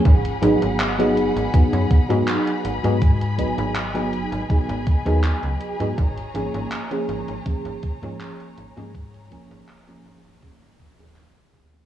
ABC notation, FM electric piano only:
X:1
M:4/4
L:1/16
Q:1/4=81
K:G#dor
V:1 name="FM electric piano"
z2 [F,B,DG]3 [F,B,DG]3 [F,B,DG]3 [F,B,DG]4 [F,B,DG] | z2 [F,B,DG]3 [F,B,DG]3 [F,B,DG]3 [F,B,DG]4 [F,B,DG] | z2 [E,A,CG]3 [E,A,CG]3 [E,A,CG]3 [E,A,CG]4 [E,A,CG] | z2 [E,A,CG]3 [E,A,CG]3 [E,A,CG]3 [E,A,CG]4 [E,A,CG] |]